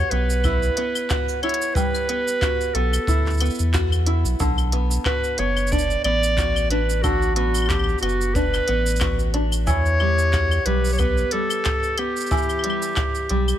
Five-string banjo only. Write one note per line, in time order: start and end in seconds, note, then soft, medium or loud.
0.00 1.75 G3 medium
0.00 0.12 B3 medium
0.00 1.10 F#4 medium
0.12 0.77 B3 medium
0.45 1.42 E4 medium
0.77 2.09 B3 medium
1.10 2.42 F#4 medium
1.43 3.07 E4 medium
1.76 4.40 G3 medium
2.09 2.75 B3 medium
2.42 3.74 F#4 medium
2.75 3.41 B3 medium
3.08 4.05 E4 medium
3.41 4.73 B3 medium
3.74 5.06 F#4 medium
4.07 4.47 E4 medium
4.40 7.03 D3 medium
4.73 5.39 B3 medium
5.06 5.38 F#4 medium
5.39 6.05 B3 medium
5.72 6.70 D4 medium
6.05 7.36 B3 medium
6.38 7.78 F#4 medium
6.71 8.34 D4 medium
7.04 9.66 D3 medium
7.36 8.02 B3 medium
8.02 8.68 B3 medium
8.36 9.33 D4 medium
8.68 10.08 B3 medium
9.01 10.00 F#4 medium
9.34 9.74 D4 medium
9.67 12.30 E3 medium
10.00 10.65 G3 medium
10.33 11.73 F#4 medium
10.66 11.32 G3 medium
10.99 11.98 B3 medium
11.33 12.63 G3 medium
11.98 13.59 B3 medium
12.31 13.59 E3 medium
12.64 13.29 G3 medium
13.30 13.59 G3 medium